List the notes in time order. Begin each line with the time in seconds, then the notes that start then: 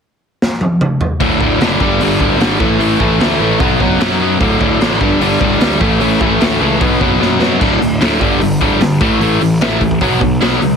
0.42 snare
0.61 high tom
0.81 mid tom
1.01 floor tom
1.20 D1 D2 A2 D3, kick, open hi-hat
1.41 D1 D2 A2 D3, kick
1.60 F#1 D2 A2 D3, snare, open hi-hat
1.80 G1 G2 D3 G3, kick
2.00 G1 G2 D3 G3, open hi-hat
2.20 D1 G2 D3 G3, kick
2.39 G#1 G2 D3 G3, snare, open hi-hat
2.59 A1 A2 E3 A3, kick
2.79 A1 A2 E3 A3, open hi-hat
3.00 A1 A2 E3 A3, kick
3.19 D2 A2 E3 A3, snare, open hi-hat
3.40 A1 A2 E3 A3
3.60 B1 B2 F#3 B3, kick, open hi-hat
3.80 F#1 B2 F#3 B3, kick
4.00 F#2 B2 F#3 B3, snare, open hi-hat
4.20 F#2 B2 F#3 B3
4.40 D1 D2 A2 D3, kick, open hi-hat
4.60 D1 D2 A2 D3, kick
4.80 A1 D2 A2 D3, snare, open hi-hat
5.00 G1 G2 D3 G3, kick
5.21 G1 G2 D3 G3, open hi-hat
5.40 D1 G2 D3 G3, kick
5.59 D2 G2 D3 G3, snare, open hi-hat
5.80 A1 A2 E3 A3, kick
6.00 A1 A2 E3 A3, open hi-hat
6.20 A1 A2 E3 A3, kick
6.39 D2 A2 E3 A3, snare, open hi-hat
6.60 C#2 A2 E3 A3
6.80 B1 B2 F#3 B3, kick, open hi-hat
7.01 F#1 B2 F#3 B3, kick
7.20 F#2 B2 F#3 B3, snare
7.40 F#2 B2 F#3 B3, snare
7.60 D1 D2 A2 D3, kick, crash
7.81 D1 D2 A2, open hi-hat
8.01 D2 A2 D3, snare, open hi-hat
8.20 G1 G2 D3 G3, kick, open hi-hat
8.41 G1 G2 D3, open hi-hat
8.61 D1 G2 D3 G3, kick, open hi-hat
8.80 G2 D3, snare, open hi-hat
9.01 A1 A2 E3 A3, kick, open hi-hat
9.20 A1 A2 E3 A3, open hi-hat
9.41 A1 A2 E3, open hi-hat
9.60 A1 A2 E3 A3, snare, open hi-hat
9.81 A1 A2 E3, kick, open hi-hat
9.91 kick
10.01 B1 B2 F#3 B3, kick, open hi-hat
10.21 B1 B2 F#3, kick, open hi-hat
10.41 B1 B2 F#3 B3, snare, open hi-hat
10.61 C#2 B2 F#3, open hi-hat